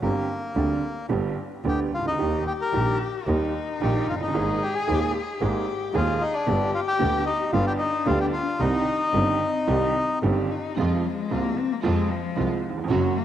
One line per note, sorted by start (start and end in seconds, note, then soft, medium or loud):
0.01 0.24 G1 medium
0.01 0.25 G1 medium
0.01 0.25 G2 medium
0.01 0.24 D3 soft
0.01 0.25 G3 soft
0.01 1.06 A#3 medium
0.01 0.25 C4 soft
0.01 0.25 G4 medium
0.56 0.78 D2 medium
0.56 0.78 D3 medium
0.56 0.78 G3 medium
0.56 0.79 C4 soft
0.56 0.79 G4 medium
1.09 1.33 G1 medium
1.09 1.32 G2 medium
1.09 1.32 D3 medium
1.09 1.33 G3 medium
1.09 1.33 B3 soft
1.09 1.33 G4 medium
1.64 1.88 D2 medium
1.64 1.88 D3 medium
1.64 1.88 G3 soft
1.64 1.88 B3 soft
1.64 1.88 G4 medium
1.68 1.80 G4 medium
1.92 2.19 C#2 soft
1.92 2.06 F4 medium
1.99 2.06 C2 soft
2.06 2.12 C#2 soft
2.06 2.44 D#4 medium
2.13 2.20 D2 medium
2.18 2.42 D#2 medium
2.18 2.42 D#3 medium
2.18 2.42 G3 soft
2.18 2.42 A#3 soft
2.18 3.29 G4 medium
2.18 2.42 G4 medium
2.47 2.53 G4 medium
2.61 2.98 A#4 medium
2.73 2.96 A#1 medium
2.73 2.96 A#2 medium
2.73 2.96 D#3 medium
2.73 2.96 G3 soft
2.73 2.96 A#3 soft
2.73 2.96 G4 medium
3.27 3.50 D#2 medium
3.27 3.51 D#2 medium
3.27 3.50 D#3 medium
3.27 3.50 G3 soft
3.27 3.50 A#3 medium
3.27 4.37 D#4 medium
3.27 3.51 G4 medium
3.81 4.04 A#1 medium
3.81 4.04 A#2 medium
3.81 4.04 D#3 medium
3.81 4.04 G3 medium
3.81 4.04 A#3 medium
3.81 4.04 G4 medium
3.81 4.07 G4 medium
4.08 4.34 F#1 soft
4.08 4.15 F4 medium
4.14 4.21 F1 soft
4.21 4.28 F#1 soft
4.21 4.63 D#4 medium
4.28 4.35 G1 medium
4.34 4.57 G#1 medium
4.34 4.57 G#2 medium
4.34 4.57 D#3 medium
4.34 4.57 G#3 soft
4.34 4.57 A#3 medium
4.34 4.58 G#4 medium
4.34 5.43 G#4 medium
4.63 4.75 G4 medium
4.75 5.12 G#4 medium
4.87 5.11 D#1 medium
4.87 5.11 D#2 medium
4.87 5.10 D#3 medium
4.87 5.11 G#3 soft
4.87 5.11 A#3 medium
4.87 5.11 G#4 medium
5.41 5.64 G#1 medium
5.41 5.64 G#2 medium
5.41 5.64 D#3 medium
5.41 5.64 G#3 medium
5.41 5.64 A#3 medium
5.41 5.96 G4 medium
5.41 5.64 G#4 medium
5.94 6.17 D#1 medium
5.94 6.17 D#2 medium
5.94 6.16 D#3 medium
5.94 6.17 G#3 medium
5.94 6.17 A#3 medium
5.94 6.23 F4 medium
5.94 6.49 G#4 medium
5.94 6.17 G#4 medium
6.21 6.35 D#4 medium
6.34 6.71 D4 medium
6.47 6.70 G1 medium
6.47 6.70 G2 medium
6.47 6.70 D3 medium
6.47 6.70 G3 medium
6.47 6.70 B3 medium
6.47 7.52 G4 medium
6.47 6.70 G4 medium
6.74 6.80 F4 medium
6.87 7.25 G4 medium
6.99 7.22 D2 medium
6.99 7.23 D2 medium
6.99 7.22 D3 medium
6.99 7.22 G3 medium
6.99 7.22 B3 soft
6.99 7.23 G4 medium
7.26 7.51 D#4 medium
7.53 7.76 G1 medium
7.53 7.76 G2 medium
7.53 7.76 D3 medium
7.53 7.76 G3 medium
7.53 7.76 B3 medium
7.53 8.62 D4 medium
7.53 7.66 F4 medium
7.53 7.76 G4 medium
7.67 7.73 G4 medium
7.79 8.07 D#4 medium
8.06 8.29 D2 medium
8.06 8.29 D3 medium
8.06 8.30 G3 medium
8.06 8.30 B3 medium
8.06 8.19 F4 medium
8.06 8.30 G4 medium
8.20 8.26 G4 medium
8.33 8.61 F4 medium
8.60 8.83 C2 medium
8.60 8.83 C3 medium
8.60 8.83 D#3 medium
8.60 8.83 G3 medium
8.60 8.83 C4 medium
8.60 10.19 D#4 medium
8.60 9.13 D#4 medium
8.60 8.83 G4 medium
9.13 9.37 G1 medium
9.13 9.37 G2 medium
9.13 9.36 D#3 medium
9.13 9.37 G3 medium
9.13 9.37 C4 medium
9.13 10.26 C4 medium
9.13 9.37 G4 medium
9.67 9.91 C2 medium
9.67 9.91 C3 medium
9.67 9.91 D#3 medium
9.67 9.91 G3 medium
9.67 9.91 C4 medium
9.67 9.91 G4 medium
10.23 10.46 G1 medium
10.23 10.46 G2 medium
10.23 10.46 D#3 medium
10.23 10.46 G3 medium
10.23 10.46 C4 medium
10.23 10.53 D4 medium
10.23 10.46 G4 medium
10.51 10.78 D#4 medium
10.77 11.00 F2 medium
10.77 11.00 C3 medium
10.77 11.00 F3 medium
10.77 11.08 F3 medium
10.77 11.00 G#3 medium
10.77 11.00 C4 medium
10.77 11.00 F4 medium
11.06 11.34 G#3 medium
11.30 11.53 C2 soft
11.30 11.54 C2 soft
11.30 11.53 C3 soft
11.30 11.53 F3 soft
11.30 11.53 G#3 soft
11.30 11.54 G#3 soft
11.30 11.60 A#3 medium
11.30 11.53 C4 soft
11.30 11.53 F4 soft
11.30 11.54 F4 soft
11.59 11.74 C4 medium
11.72 11.84 A#3 medium
11.83 12.06 F2 medium
11.83 12.06 C3 medium
11.83 12.06 F3 medium
11.83 12.06 G#3 medium
11.83 12.12 G#3 medium
11.83 12.06 C4 medium
11.83 12.06 F4 medium
12.10 12.63 F3 medium
12.36 12.59 C2 soft
12.36 12.59 C2 medium
12.36 12.59 C3 soft
12.36 12.59 F3 soft
12.36 12.59 G#3 soft
12.36 12.59 C4 soft
12.36 12.59 F4 medium
12.36 12.59 F4 soft
12.70 12.76 D#2 soft
12.77 12.83 E2 medium
12.84 12.90 F2 medium
12.89 13.11 F#1 medium
12.89 13.12 F#2 medium
12.89 13.12 C#3 medium
12.89 13.12 F#3 medium
12.89 13.19 F#3 medium
12.89 13.11 A#3 medium
12.89 13.12 A#3 medium
12.89 13.11 C#4 medium
12.89 13.12 F#4 medium
13.17 13.25 A#3 medium